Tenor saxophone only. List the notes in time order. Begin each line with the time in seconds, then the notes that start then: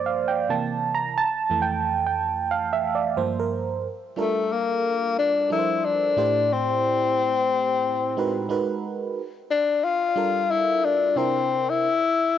4.19 A3
4.53 A#3
5.19 D4
5.52 E4
5.85 D4
6.53 C4
9.51 D4
9.84 F4
10.51 E4
10.85 D4
11.17 C4
11.70 E4